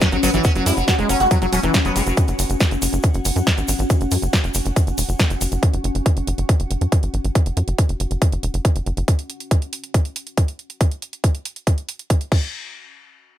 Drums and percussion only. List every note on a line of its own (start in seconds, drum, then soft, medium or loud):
0.01 kick loud
0.01 snare loud
0.01 closed hi-hat loud
0.01 shaker medium
0.12 closed hi-hat soft
0.12 shaker soft
0.23 open hi-hat loud
0.23 shaker medium
0.34 closed hi-hat soft
0.34 shaker soft
0.44 kick loud
0.44 closed hi-hat medium
0.44 shaker medium
0.56 closed hi-hat soft
0.56 shaker soft
0.66 open hi-hat loud
0.66 shaker medium
0.77 closed hi-hat soft
0.77 shaker soft
0.88 kick loud
0.88 snare loud
0.88 closed hi-hat medium
0.88 shaker medium
0.99 closed hi-hat soft
0.99 shaker soft
1.09 open hi-hat loud
1.09 shaker medium
1.20 closed hi-hat soft
1.20 shaker soft
1.31 kick loud
1.31 closed hi-hat loud
1.31 shaker soft
1.42 closed hi-hat soft
1.42 shaker soft
1.53 open hi-hat loud
1.53 shaker medium
1.63 closed hi-hat soft
1.63 shaker soft
1.74 kick loud
1.74 snare loud
1.74 closed hi-hat medium
1.74 shaker medium
1.85 closed hi-hat soft
1.85 shaker soft
1.96 open hi-hat loud
1.96 shaker medium
2.07 closed hi-hat soft
2.07 shaker soft
2.17 kick loud
2.17 closed hi-hat medium
2.17 shaker medium
2.28 closed hi-hat soft
2.28 shaker soft
2.39 open hi-hat loud
2.39 shaker loud
2.49 closed hi-hat soft
2.49 shaker soft
2.60 kick loud
2.60 snare loud
2.60 closed hi-hat medium
2.60 shaker medium
2.71 closed hi-hat soft
2.71 shaker soft
2.82 open hi-hat loud
2.82 shaker medium
2.93 closed hi-hat soft
2.93 shaker soft
3.03 kick loud
3.03 closed hi-hat medium
3.03 shaker soft
3.14 closed hi-hat soft
3.14 shaker soft
3.25 open hi-hat loud
3.25 shaker loud
3.36 closed hi-hat soft
3.36 shaker soft
3.47 kick loud
3.47 snare loud
3.47 closed hi-hat medium
3.47 shaker soft
3.58 closed hi-hat soft
3.58 shaker soft
3.68 open hi-hat loud
3.68 shaker medium
3.79 closed hi-hat soft
3.79 shaker soft
3.90 kick loud
3.90 closed hi-hat medium
3.90 shaker medium
4.01 closed hi-hat soft
4.01 shaker soft
4.11 open hi-hat loud
4.11 shaker medium
4.22 closed hi-hat soft
4.22 shaker soft
4.33 kick loud
4.33 snare loud
4.33 closed hi-hat medium
4.33 shaker medium
4.44 closed hi-hat soft
4.44 shaker soft
4.54 open hi-hat loud
4.54 shaker loud
4.65 closed hi-hat soft
4.65 shaker soft
4.76 kick loud
4.76 closed hi-hat medium
4.76 shaker medium
4.87 closed hi-hat soft
4.87 shaker soft
4.98 open hi-hat loud
4.98 shaker loud
5.09 closed hi-hat soft
5.09 shaker soft
5.20 kick loud
5.20 snare loud
5.20 closed hi-hat medium
5.20 shaker medium
5.30 closed hi-hat soft
5.30 shaker soft
5.41 open hi-hat loud
5.41 shaker medium
5.52 closed hi-hat soft
5.52 shaker soft
5.63 kick loud
5.63 closed hi-hat medium
5.74 closed hi-hat soft
5.84 closed hi-hat medium
5.95 closed hi-hat soft
6.06 kick loud
6.06 closed hi-hat medium
6.17 closed hi-hat soft
6.27 closed hi-hat medium
6.38 closed hi-hat soft
6.49 kick loud
6.49 closed hi-hat medium
6.60 closed hi-hat soft
6.71 closed hi-hat medium
6.81 closed hi-hat soft
6.92 kick loud
6.92 closed hi-hat medium
7.03 closed hi-hat soft
7.14 closed hi-hat soft
7.25 closed hi-hat soft
7.35 kick loud
7.35 closed hi-hat medium
7.46 closed hi-hat soft
7.57 closed hi-hat medium
7.68 closed hi-hat soft
7.78 kick loud
7.78 closed hi-hat medium
7.89 closed hi-hat soft
8.00 closed hi-hat medium
8.11 closed hi-hat soft
8.22 kick loud
8.22 closed hi-hat medium
8.32 closed hi-hat soft
8.43 closed hi-hat medium
8.54 closed hi-hat soft
8.65 kick loud
8.65 closed hi-hat medium
8.76 closed hi-hat soft
8.86 closed hi-hat soft
8.97 closed hi-hat soft
9.08 kick loud
9.08 closed hi-hat loud
9.19 closed hi-hat soft
9.30 closed hi-hat medium
9.40 closed hi-hat soft
9.51 kick loud
9.51 closed hi-hat medium
9.62 closed hi-hat soft
9.73 closed hi-hat medium
9.84 closed hi-hat soft
9.94 kick loud
9.94 closed hi-hat medium
10.05 closed hi-hat soft
10.16 closed hi-hat medium
10.27 closed hi-hat soft
10.37 kick loud
10.37 closed hi-hat medium
10.48 closed hi-hat soft
10.59 closed hi-hat soft
10.70 closed hi-hat soft
10.81 kick loud
10.81 closed hi-hat medium
10.91 closed hi-hat soft
11.02 closed hi-hat medium
11.13 closed hi-hat soft
11.24 kick loud
11.24 closed hi-hat medium
11.35 closed hi-hat soft
11.45 closed hi-hat medium
11.56 closed hi-hat soft
11.67 kick loud
11.67 closed hi-hat medium
11.78 closed hi-hat soft
11.89 closed hi-hat medium
11.99 closed hi-hat soft
12.10 kick loud
12.10 closed hi-hat loud
12.21 closed hi-hat soft
12.32 kick loud
12.32 crash medium